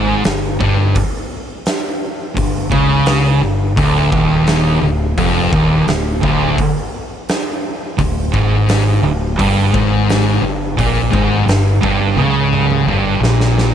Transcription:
Already playing: G#1 G#2
0.24 G1 G2, snare, open hi-hat
0.60 G1 G2, kick
0.95 kick, open hi-hat
1.66 snare, open hi-hat
2.37 G1 G2, kick, open hi-hat
2.72 C#2 C#3, kick
3.06 snare, open hi-hat
3.40 G1 G2
3.77 D1 D2, kick, open hi-hat
4.12 D#1 D#2, kick
4.47 snare, open hi-hat
4.82 D1 D2
5.17 F1 F2, kick, open hi-hat
5.52 D#1 D#2, kick
5.87 D1 D2, snare, open hi-hat
6.23 D1 D2, kick
6.58 kick, open hi-hat
7.29 snare, open hi-hat
7.98 D1 D2, kick, open hi-hat
8.34 G#1 G#2, kick
8.69 snare, open hi-hat
9.03 D1 D2
9.38 G1 G2, kick, open hi-hat
9.73 G#1 G#2, kick
10.09 snare, open hi-hat
10.42 G1 G2
10.78 A#1 A#2, kick, open hi-hat
11.11 G#1 G#2, kick
11.46 G1 G2, snare, open hi-hat
11.82 G1 G2, kick
12.17 C#2 C#3, high tom
12.53 high tom
12.70 high tom
12.85 G1 G2, mid tom
13.20 A#1 A#2
13.24 snare
13.40 snare
13.58 snare

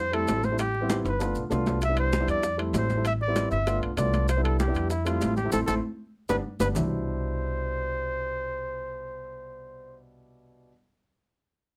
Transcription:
Already playing: F2 C5
0.11 G3 A3 C4 E4 A4, high conga, high timbale
0.27 A1, high bongo, low bongo, high conga, high timbale, low timbale, maracas
0.43 C5, high bongo, high conga, maracas
0.51 G3 A3 C4 E4
0.58 G4, high bongo, high conga, high timbale, maracas
0.74 high bongo, high conga
0.81 G3 B3 C4 E4
0.90 high bongo, high conga, high timbale, maracas
1.05 G1 B4, high bongo, high timbale, maracas
1.19 A3 B3 D4 F4, high bongo, high conga, high timbale, maracas
1.35 B1, high conga, maracas
1.50 C2 A3 B3 D4 F4, high bongo, low bongo, high conga, low timbale, maracas
1.66 high bongo, high conga, low timbale, maracas
1.81 E5, high bongo, high conga, high timbale, maracas
1.89 G3 B3 D4 E4
1.97 C5, high bongo, high conga, high timbale
2.13 high bongo, high conga, low timbale, maracas
2.19 G3 B3 D4 E4
2.28 F2 D5, high bongo, high conga, high timbale, maracas
2.43 high bongo, high conga, maracas
2.57 G3 A3 C4 E4, high conga, high timbale
2.73 A1 C5, high bongo, low bongo, high conga, high timbale, low timbale, maracas
2.90 high bongo, high conga, maracas
2.96 G3 A3 C4 E4
3.05 E5, high bongo, high conga, high timbale, maracas
3.21 D5, high bongo, high conga
3.28 G3 B3 C4 E4
3.36 high bongo, high conga, high timbale, low timbale, maracas
3.51 G1 E5, high bongo, maracas
3.67 A3 B3 D4 F4, high bongo, high conga, high timbale, maracas
3.82 B1, high conga, high timbale
3.97 C2 A3 B3 D4 F4 D5, high bongo, low bongo, high conga, high timbale, low timbale, maracas
4.13 high bongo, high conga, high timbale, maracas
4.28 C5, high bongo, high conga, high timbale, maracas
4.37 G3 B3 D4 E4
4.44 A4, high bongo, high conga, high timbale
4.60 G4, high bongo, high conga, low timbale, maracas
4.67 G3 B3 D4 E4
4.75 F2, high bongo, high conga, high timbale, maracas
4.90 E4, high bongo, high conga, maracas
5.05 G3 A3 C4 E4 F4, high conga, high timbale, maracas
5.21 A1, high bongo, low bongo, high conga, high timbale, low timbale, maracas
5.37 G4, high bongo, high conga, maracas
5.44 G3 A3 C4 E4
5.52 A1 A3 C4 E4 A4, high bongo, high conga, high timbale, maracas
5.67 A1 A3 C4 E4 A4, high bongo, high conga, high timbale, maracas
6.29 G1 G3 B3 D4 B4, high bongo, high conga, high timbale, maracas
6.59 G1 G3 B3 D4 B4, high bongo, high conga, high timbale, maracas
6.73 C2 B2 G3 D4 C5, low bongo, low conga, low timbale, maracas
6.78 E4

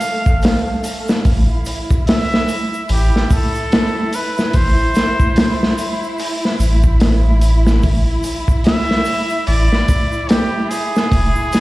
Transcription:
Already playing: A3 A4 F5
0.01 open hi-hat, shaker
0.26 A1, kick, shaker
0.42 snare, open hi-hat, shaker
0.84 open hi-hat, shaker
1.08 snare, shaker
1.24 A1 E4, kick, open hi-hat, shaker
1.65 open hi-hat, shaker
1.90 kick, shaker
2.07 E5, snare, open hi-hat, shaker
2.34 snare
2.48 open hi-hat, shaker
2.74 shaker
2.89 A1 G4, open hi-hat, shaker
3.16 snare
3.30 A4, kick, open hi-hat, shaker
3.55 shaker
3.72 snare, open hi-hat, shaker
4.13 B4, open hi-hat, shaker
4.37 snare, shaker
4.53 A1 C5, kick, open hi-hat, shaker
4.95 snare, open hi-hat, shaker
5.20 kick, shaker
5.36 snare, open hi-hat, shaker
5.63 snare
5.78 open hi-hat, triangle, shaker
6.04 shaker
6.18 open hi-hat, shaker
6.45 snare
6.59 A1, open hi-hat, shaker
6.83 kick, shaker
7.00 A1, snare, open hi-hat, shaker
7.41 open hi-hat, shaker
7.67 snare, shaker
7.82 A1, kick, open hi-hat, shaker
8.23 open hi-hat, shaker
8.48 kick, shaker
8.64 E5, snare, open hi-hat, shaker
8.91 snare
9.05 open hi-hat, shaker
9.30 shaker
9.47 A1 D5, open hi-hat, shaker
9.72 snare
9.88 kick, open hi-hat, shaker
10.12 shaker
10.29 G4, snare, open hi-hat, shaker
10.70 G#4, open hi-hat, shaker
10.96 snare, shaker
11.12 E1, kick, open hi-hat, shaker
11.36 triangle
11.52 snare, open hi-hat, shaker

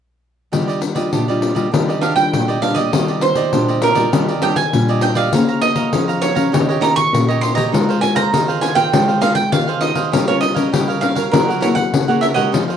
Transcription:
0.52 D#3 G3 D4 F4 G4 D5 D#5, pandeiro
0.68 G4 D5 D#5, pandeiro
0.81 muted cavaquinho stroke, pandeiro
0.95 G3 D4 F4 G4 D5 D#5, pandeiro
1.12 A#2 D4 G4 D5 D#5, pandeiro
1.28 G3 D4 F4 G4 D5 D#5, pandeiro
1.42 pandeiro
1.55 G3 D4 F4 G4 D5 D#5, pandeiro
1.72 D#3 G3 D4 F4 G4 D5 D#5, pandeiro
1.88 G4 D5 D#5, pandeiro
2.01 D4 G4 D5 D#5 F5, pandeiro
2.16 G3 D4 F4 G5, muted cavaquinho stroke, pandeiro
2.33 A#2, pandeiro
2.48 G4 D5 D#5, pandeiro
2.62 G3 D4 F4 G4 D5 D#5 F5, pandeiro
2.75 G4 D5 D#5, pandeiro
2.92 D#3 G3 D4 F4 G4 D5 D#5, pandeiro
3.08 G4 D5 D#5, pandeiro
3.21 C5, muted cavaquinho stroke, pandeiro
3.35 G4 D5 D#5, pandeiro
3.53 A#2 G3 D4 F4 G4 D5 D#5, pandeiro
3.68 G4 D5 D#5, pandeiro
3.82 A#4, pandeiro
3.95 G3 D4 F4 G4 D5 D#5, pandeiro
4.12 D#3 G3 D4 F4 G4 D5 D#5, pandeiro
4.28 G4 D5 D#5, pandeiro
4.42 G3 D4 F4 G4 D5 D#5 G5, pandeiro
4.56 G#5, muted cavaquinho stroke, pandeiro
4.73 A#2 G3 D4 F4, pandeiro
4.88 G4 D5 D#5, pandeiro
5.01 D4 G4 D5 D#5 G5, pandeiro
5.15 G4 D5 D#5 F5, pandeiro
5.33 A#3 C#4 G#4 C5 C#5 F5 A#5, pandeiro
5.48 C#5 F5 A#5, pandeiro
5.61 D#5, muted cavaquinho stroke, pandeiro
5.76 C#5 F5 A#5, pandeiro
5.93 F3 C#4 G#4 C5 C#5 F5 A#5, pandeiro
6.08 C#5 F5 A#5, pandeiro
6.22 C#5, pandeiro
6.35 C#4 G4 A#4 C#5 F5 A#5, pandeiro
6.52 D#3 D#4 G4 C#5 D#5, pandeiro
6.69 G4 C#5 D#5, pandeiro
6.81 C#4 D#4 G4 A#4 C#5 D#5 A#5, pandeiro
6.95 C#6, muted cavaquinho stroke, pandeiro
7.12 A#2 C#4 G4 A#4, pandeiro
7.28 G4 C#5 D#5, pandeiro
7.41 D#4 G4 C#5 D#5 C6, pandeiro
7.55 G4 C#5 D#5 A#5, pandeiro
7.72 G#3 C4 D#4 F4 G#4 A#4 C5 F5, pandeiro
7.89 G#4 C5 F5, pandeiro
8.01 C4 F4 A#4 G#5, muted cavaquinho stroke, pandeiro
8.15 G#4 C5 F5 A#5, pandeiro
8.33 D#3 C4 D#4 F4 G#4 A#4 C5 F5, pandeiro
8.48 G#4 C5 F5, pandeiro
8.61 G#5, pandeiro
8.75 C4 F4 G#4 A#4 C5 F5 G5, pandeiro
8.92 G#3 D#4 G#4 C5 F5, pandeiro
9.08 G#4 C5 F5, pandeiro
9.21 C4 D#4 F4 G#4 A#4 C5 F5, pandeiro
9.34 G5, muted cavaquinho stroke, pandeiro
9.52 D#3 C4 F4 A#4 F5, pandeiro
9.68 G#4 C5 F5, pandeiro
9.81 D#4 G#4 C5 D#5 F5, pandeiro
9.95 G#4 C5 F5, pandeiro
10.12 G3 C#4 F4 G4 A#4 C#5 F5, pandeiro
10.28 C#4 F4 A#4 C#5 F5, pandeiro
10.41 D#5, muted cavaquinho stroke, pandeiro
10.54 C#4 F4 A#4 C#5 F5, pandeiro
10.72 G3 G4 A#4 C#5 F5, pandeiro
10.88 A#4 C#5 F5, pandeiro
11.01 C#4 F4 A#4 F5, pandeiro
11.15 A#4 C#5 F5, pandeiro
11.32 F#3 A#3 E4 G#4 A#4 C#5 F#5, pandeiro
11.48 A#4 C#5 F#5, pandeiro
11.61 A#3 E4 G#4 A#4 C#5 F#5, pandeiro
11.75 F#5, muted cavaquinho stroke, pandeiro
11.93 C#3, pandeiro
12.08 A#3 E4 G#4 A#4 C#5 F#5, pandeiro
12.21 E4 A#4 C#5 E5 F#5, pandeiro
12.34 G#3 D#4 G4 A#4 C#5 D#5 F#5, pandeiro
12.52 F3 D#4 G#4 C5 F5, pandeiro
12.68 G#4 C5 F5, pandeiro

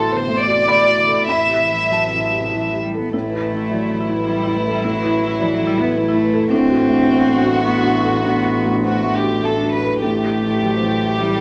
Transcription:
Already playing: A1 A2 A3 F#4 A4 C6
0.00 F#3
0.10 D3 B3 C5
0.26 C3 A3
0.39 A2 D5
0.47 F#4
0.53 C3
0.67 D3 A3 B5
0.80 F#3
0.87 F#4
0.95 D3
1.07 A4
1.11 C3
1.27 A1 A2 E5 B5
1.44 C3
1.49 G4
1.59 E3
1.70 E3
1.76 G3
1.90 E3 F#3 A5
2.07 C3
2.11 E3
2.22 A2
2.31 G4
2.38 C3
2.52 E3
2.68 F#3
2.73 G4
2.82 G3
2.94 A4
2.99 B3
3.10 A1 A3 E4
3.14 A2
3.28 B4
3.34 E4
3.42 B4
3.52 E3
3.57 E4
3.70 F#3 D5
3.86 E3 A4
4.00 E4
4.09 E4
4.15 B4
4.25 E3 G3 B4
4.43 E4
4.47 E4
4.55 A3 B4
4.66 G3 A4
4.84 A2 F#3 E4
4.99 B4
5.03 E4
5.12 B4
5.22 E3
5.27 E4
5.40 E3 F#3 D5
5.53 F#3 A4
5.59 E3
5.66 G3 E4
5.78 B3 E4 B4
5.96 E3 A3 B4
6.08 E4
6.14 E4
6.24 B4
6.34 A4
6.51 A1 A2 C4 D4 F#4
6.65 A4
6.70 F#4
6.79 A4
6.89 A3
6.93 D4
7.07 B3 C5
7.23 A3 F#4
7.36 D4
7.45 F#4
7.51 A4
7.65 A3 B3 A4
7.80 D4
7.85 F#4
7.95 A4
8.05 A4
8.24 A2 B3 D4
8.39 A4
8.44 F#4
8.54 A4
8.65 A3
8.69 D4
8.83 A3 B3 F#4 C5
8.99 F#4
9.03 A3
9.14 D4 G4
9.24 F#4
9.29 A4
9.43 F#3 A3 A4
9.57 D4
9.64 F#4
9.73 A4 B4
9.83 A4
10.02 A1 A2 A3 G4 A4
10.18 E5
10.24 G4
10.32 E5
10.42 E3
10.47 A4
10.61 F#3 G5
10.76 C5
10.81 E3
10.91 A4
11.02 G4 E5
11.19 E3 G3 E5
11.34 A4

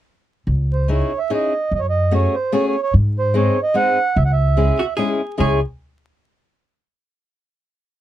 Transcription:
0.47 C#2
0.73 C5
0.88 C#4 D#4 E4 G#4
0.93 C#5
1.18 E5
1.30 C#4 D#4 E4 G#4 D#5
1.71 F#2 D#5
1.79 C#5
1.90 D#5
2.11 A3 C#4 F#4 G#4 C#5
2.34 C5
2.52 A3 C#4 F#4 G#4 C#5
2.68 C#5
2.82 C#5
2.94 G#2
3.19 C5
3.34 G#3 C4 D#4 G#4 C#5
3.63 D#5
3.74 G#3 C4 D#4 G#4 F#5
4.16 C#2 E5
4.25 F#5
4.32 E5
4.57 G#3 C#4 E4 G#4
4.79 F#4
4.98 G#3 C#4 E4 G#4
5.38 C#2 G#3 C#4 E4 G#4 C#5

